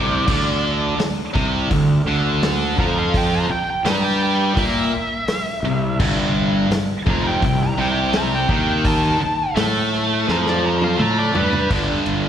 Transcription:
0.00 0.26 C2 loud
0.00 0.27 C3 loud
0.00 0.97 D5 medium
0.27 0.96 D2 medium
0.27 0.98 D3 loud
0.27 kick loud
0.27 crash loud
0.99 muted fingered electric bass stroke soft
0.99 muted distorted electric guitar stroke medium
0.99 snare loud
0.99 open hi-hat medium
1.34 1.69 C2 medium
1.34 1.70 C3 loud
1.34 kick loud
1.34 snare soft
1.71 2.04 D2 medium
1.71 2.00 D3 medium
1.71 kick loud
1.71 open hi-hat medium
2.06 2.74 D2 loud
2.06 2.78 D3 loud
2.43 snare loud
2.43 open hi-hat medium
2.78 3.46 F2 loud
2.78 3.49 F3 loud
2.78 2.97 A#5 medium
2.78 kick loud
2.99 3.15 F5 loud
3.14 3.33 G5 loud
3.14 kick loud
3.14 open hi-hat medium
3.35 3.51 A#5 loud
3.49 3.68 G5 medium
3.49 muted fingered electric bass stroke soft
3.49 muted distorted electric guitar stroke medium
3.70 3.86 G5 medium
3.85 4.53 G2 medium
3.85 4.56 G3 loud
3.85 4.04 A#5 loud
3.85 snare loud
3.85 open hi-hat medium
4.05 4.21 G5 loud
4.23 4.57 G5 medium
4.57 4.90 A#2 loud
4.57 4.92 A#3 loud
4.57 6.68 E5 loud
4.57 kick loud
4.57 open hi-hat medium
5.28 snare loud
5.28 open hi-hat medium
5.63 5.97 C2 medium
5.63 5.93 C3 medium
6.00 6.67 G1 loud
6.00 6.70 G2 loud
6.00 kick loud
6.00 crash loud
6.71 muted fingered electric bass stroke soft
6.71 muted distorted electric guitar stroke medium
6.71 snare loud
6.71 open hi-hat medium
7.06 7.40 F1 medium
7.06 7.41 F2 loud
7.06 7.26 A#5 medium
7.06 kick loud
7.28 7.44 G5 loud
7.42 7.75 C2 medium
7.42 7.71 C3 medium
7.42 7.61 G5 medium
7.42 kick loud
7.42 open hi-hat medium
7.63 7.79 A#5 loud
7.78 8.45 C2 loud
7.78 8.48 C3 loud
7.78 7.97 G5 loud
7.99 8.15 G5 loud
8.13 8.33 A#5 loud
8.13 snare loud
8.13 open hi-hat medium
8.35 8.51 G5 loud
8.49 9.16 D#2 medium
8.49 9.20 D#3 loud
8.49 8.86 G5 loud
8.49 kick loud
8.85 9.55 A5 loud
8.85 kick loud
8.85 open hi-hat medium
9.20 muted fingered electric bass stroke soft
9.20 muted distorted electric guitar stroke medium
9.56 10.24 A2 loud
9.56 10.26 A3 loud
9.56 snare loud
9.56 open hi-hat medium
9.93 snare soft
10.28 10.96 F2 loud
10.28 10.98 F3 loud
10.28 10.47 A#5 loud
10.28 snare medium
10.47 10.64 D5 loud
10.47 snare medium
10.66 10.82 A#5 medium
10.82 11.00 F5 loud
10.82 high tom medium
10.98 11.32 A2 loud
10.98 11.33 A3 loud
10.98 mid tom medium
11.02 11.18 A#5 loud
11.19 11.35 D5 loud
11.35 11.68 G2 loud
11.35 11.70 G3 loud
11.35 11.70 B4 loud
11.35 floor tom loud
11.53 floor tom loud
11.70 11.98 G1 medium
11.70 12.29 G2 medium
11.70 12.29 D3 medium
11.70 kick loud
11.70 crash loud
12.06 12.29 G1 medium
12.06 ride medium

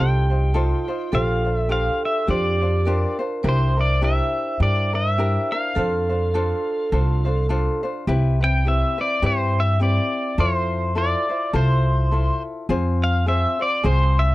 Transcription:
0.00 0.72 C2 medium
0.00 0.31 D#4 medium
0.00 0.30 F4 medium
0.00 0.51 G4 medium
0.00 0.30 A4 medium
0.00 0.29 C5 medium
0.00 1.14 G5 loud
0.30 0.53 D#4 soft
0.30 0.54 F4 soft
0.30 0.54 C5 soft
0.54 0.88 D#4 medium
0.54 1.14 F4 medium
0.54 0.88 F4 medium
0.54 0.88 A4 medium
0.54 0.87 C5 medium
0.88 1.13 D#4 soft
0.88 1.12 F4 soft
0.88 1.12 C5 medium
1.12 1.88 A#1 loud
1.12 1.46 D4 medium
1.12 1.45 F4 medium
1.12 1.46 G4 medium
1.12 2.24 A4 medium
1.12 1.43 C5 medium
1.12 1.57 F5 medium
1.45 1.68 D4 soft
1.45 1.69 F4 soft
1.45 1.69 C5 soft
1.57 1.71 E5 medium
1.69 2.28 D4 medium
1.69 2.27 F4 medium
1.69 2.27 G4 medium
1.69 2.29 C5 medium
1.69 2.05 F5 medium
2.05 2.30 E5 medium
2.27 3.04 F2 medium
2.27 2.62 D4 medium
2.27 2.61 F4 medium
2.27 2.87 G4 medium
2.27 2.61 G4 medium
2.27 2.60 C5 medium
2.27 3.17 D5 medium
2.61 2.86 D4 soft
2.61 2.86 F4 soft
2.61 2.86 C5 soft
2.86 3.20 D4 medium
2.86 3.19 F4 medium
2.86 3.20 G4 medium
2.86 3.45 A#4 medium
2.86 3.18 C5 medium
3.19 3.43 D4 soft
3.19 3.44 F4 medium
3.19 3.44 C5 medium
3.43 4.19 C2 loud
3.43 3.78 D4 medium
3.43 3.77 E4 medium
3.43 3.77 G4 medium
3.43 3.76 A#4 medium
3.43 5.71 C5 medium
3.49 3.81 C5 medium
3.77 4.01 D4 soft
3.77 4.01 E4 soft
3.77 4.02 A#4 soft
3.77 4.04 D5 medium
4.01 4.60 D4 medium
4.01 4.60 E4 medium
4.01 4.59 G4 medium
4.01 4.60 A#4 medium
4.01 4.62 E5 medium
4.60 5.35 G2 loud
4.60 4.94 D4 medium
4.60 4.93 E4 medium
4.60 4.93 G4 medium
4.60 4.92 A#4 medium
4.60 4.95 D5 medium
4.93 5.17 D4 soft
4.93 5.18 E4 soft
4.93 5.18 A#4 medium
4.93 5.54 E5 medium
5.18 5.52 D4 medium
5.18 5.52 E4 medium
5.18 5.51 G4 medium
5.18 5.51 A#4 medium
5.52 5.76 D4 soft
5.52 5.77 E4 soft
5.52 5.76 A#4 medium
5.52 7.46 F5 medium
5.75 6.51 F2 medium
5.75 6.10 D4 medium
5.75 6.09 F4 medium
5.75 6.33 A4 medium
5.75 6.09 A4 medium
5.75 6.08 C5 medium
6.09 6.34 D4 soft
6.09 6.34 F4 soft
6.09 6.34 C5 medium
6.34 6.91 D4 medium
6.34 6.92 F4 medium
6.34 6.93 A4 medium
6.34 6.91 A4 medium
6.34 6.93 C5 medium
6.92 7.67 C2 medium
6.92 7.25 D4 medium
6.92 7.27 F4 medium
6.92 7.25 F4 medium
6.92 7.25 A4 medium
6.92 7.24 C5 medium
7.25 7.49 D4 soft
7.25 7.49 F4 soft
7.25 7.79 A4 medium
7.25 7.49 C5 medium
7.49 7.83 D4 medium
7.49 7.83 F4 medium
7.49 7.83 A4 medium
7.49 7.82 C5 medium
7.83 8.08 D4 soft
7.83 8.08 F4 soft
7.83 8.07 C5 medium
8.07 8.82 C2 loud
8.07 8.41 C4 medium
8.07 8.41 E4 medium
8.07 8.41 G4 medium
8.07 8.39 B4 medium
8.41 8.65 C4 soft
8.41 8.65 E4 soft
8.41 8.65 B4 medium
8.41 8.67 G5 medium
8.65 8.99 C4 medium
8.65 8.98 E4 medium
8.65 8.98 G4 soft
8.65 8.97 B4 medium
8.65 9.01 E5 loud
8.98 9.21 C4 soft
8.98 9.22 E4 soft
8.98 9.22 B4 medium
8.98 9.25 D5 medium
9.22 9.98 G2 medium
9.22 9.80 C4 medium
9.22 9.81 E4 medium
9.22 9.78 G4 medium
9.22 9.80 B4 medium
9.26 9.59 C5 medium
9.60 9.81 E5 medium
9.80 10.38 C4 medium
9.80 10.38 E4 medium
9.80 10.38 G4 medium
9.80 10.38 B4 medium
9.80 10.41 D5 medium
10.38 11.13 F2 medium
10.38 10.94 E4 medium
10.38 10.96 F4 medium
10.38 10.94 A4 medium
10.38 10.97 C5 medium
10.95 11.29 E4 medium
10.95 11.29 F4 medium
10.95 11.29 A4 medium
10.95 11.28 C5 medium
10.95 11.56 D5 medium
11.29 11.53 E4 soft
11.29 11.53 F4 soft
11.29 11.54 C5 soft
11.53 12.29 C2 medium
11.53 12.11 E4 medium
11.53 12.12 F4 medium
11.53 12.10 A4 medium
11.53 12.13 C5 medium
11.53 12.42 C5 medium
12.11 12.70 E4 medium
12.11 12.69 F4 medium
12.11 12.69 A4 medium
12.11 12.69 C5 medium
12.69 13.44 F2 medium
12.69 13.26 C4 medium
12.69 13.26 F4 medium
12.69 13.25 G#4 medium
12.69 13.27 C5 loud
13.04 13.28 F5 medium
13.26 13.60 C4 medium
13.26 13.59 F4 medium
13.26 13.60 G#4 medium
13.26 13.58 C5 medium
13.26 13.62 E5 medium
13.59 13.83 C4 soft
13.59 13.83 F4 soft
13.59 13.84 C5 soft
13.59 13.86 D5 medium
13.83 14.35 C2 loud
13.83 14.35 C4 medium
13.83 14.35 F4 medium
13.83 14.35 G#4 medium
13.83 14.35 C5 medium
13.83 14.20 C5 medium
14.19 14.35 E5 medium

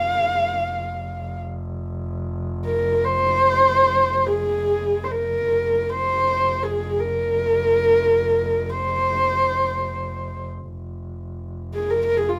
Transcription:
0.00 0.25 F1 medium
0.00 1.40 F5 medium
0.25 5.48 F1 medium
2.66 3.06 A#4 medium
3.05 4.28 C5 medium
4.27 5.06 G#4 medium
5.04 5.13 C5 medium
5.11 5.91 A#4 medium
5.49 10.69 F1 medium
5.90 6.65 C5 medium
6.63 7.01 G#4 medium
7.00 8.71 A#4 medium
8.70 10.45 C5 medium
10.69 12.39 F1 medium
11.74 11.92 G#4 medium
11.90 12.04 A#4 medium
12.05 12.19 A#4 medium
12.17 12.31 G#4 medium
12.29 12.39 F4 medium

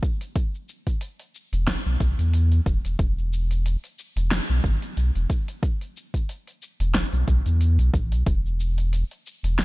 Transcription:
0.03 kick loud
0.03 cabasa medium
0.21 open hi-hat soft
0.21 cabasa soft
0.36 kick loud
0.36 open hi-hat medium
0.36 cabasa soft
0.55 cabasa soft
0.69 cabasa medium
0.87 kick medium
0.87 open hi-hat soft
0.87 cabasa soft
1.01 open hi-hat medium
1.01 cabasa soft
1.20 open hi-hat soft
1.20 cabasa soft
1.35 cabasa medium
1.53 1.76 E1 medium
1.53 open hi-hat soft
1.53 cabasa soft
1.67 kick medium
1.67 snare medium
1.67 open hi-hat medium
1.67 cabasa soft
1.86 1.97 B1 loud
1.86 cabasa soft
2.00 2.14 B1 loud
2.00 kick loud
2.00 cabasa medium
2.19 2.60 E2 medium
2.19 open hi-hat soft
2.19 cabasa soft
2.34 open hi-hat medium
2.34 cabasa soft
2.52 open hi-hat soft
2.52 cabasa soft
2.66 2.80 E1 medium
2.66 kick loud
2.66 cabasa medium
2.85 2.96 E1 medium
2.85 open hi-hat soft
2.85 cabasa soft
2.99 3.76 E1 medium
2.99 kick loud
2.99 open hi-hat soft
2.99 cabasa soft
3.18 cabasa soft
3.33 cabasa medium
3.51 open hi-hat soft
3.51 cabasa soft
3.66 open hi-hat medium
3.66 cabasa soft
3.84 open hi-hat soft
3.84 cabasa soft
3.99 cabasa medium
4.16 4.40 E1 loud
4.16 open hi-hat soft
4.16 cabasa soft
4.31 snare medium
4.31 open hi-hat soft
4.31 cabasa soft
4.49 4.61 B1 medium
4.49 cabasa soft
4.64 4.78 G1 medium
4.64 kick loud
4.64 cabasa medium
4.82 open hi-hat soft
4.82 cabasa soft
4.97 5.11 B1 medium
4.97 open hi-hat medium
4.97 cabasa soft
5.15 5.26 E1 medium
5.15 open hi-hat soft
5.15 cabasa soft
5.30 kick loud
5.30 cabasa medium
5.48 open hi-hat soft
5.48 cabasa soft
5.63 kick loud
5.63 open hi-hat soft
5.63 cabasa soft
5.81 open hi-hat soft
5.81 cabasa soft
5.97 cabasa medium
6.14 kick medium
6.14 open hi-hat soft
6.14 cabasa soft
6.29 open hi-hat medium
6.29 cabasa soft
6.47 open hi-hat soft
6.47 cabasa soft
6.63 cabasa medium
6.80 7.04 E1 medium
6.80 open hi-hat soft
6.80 cabasa soft
6.95 kick medium
6.95 snare medium
6.95 open hi-hat soft
6.95 cabasa soft
7.13 7.24 B1 medium
7.13 open hi-hat soft
7.13 cabasa soft
7.28 7.42 B1 loud
7.28 kick medium
7.28 cabasa medium
7.46 7.78 E2 medium
7.46 open hi-hat soft
7.46 cabasa soft
7.61 open hi-hat medium
7.61 cabasa soft
7.79 7.90 B1 medium
7.79 open hi-hat soft
7.79 cabasa soft
7.94 8.13 A1 medium
7.94 kick loud
7.94 cabasa medium
8.12 8.23 B1 medium
8.12 open hi-hat soft
8.12 cabasa soft
8.26 9.04 E1 medium
8.26 kick loud
8.26 open hi-hat soft
8.26 cabasa soft
8.46 cabasa soft
8.60 cabasa medium
8.78 open hi-hat soft
8.78 cabasa soft
8.93 open hi-hat medium
8.93 cabasa soft
9.11 open hi-hat soft
9.11 cabasa soft
9.27 cabasa medium
9.43 9.65 E1 medium
9.43 open hi-hat soft
9.43 cabasa soft
9.59 snare medium
9.59 open hi-hat soft
9.59 cabasa soft

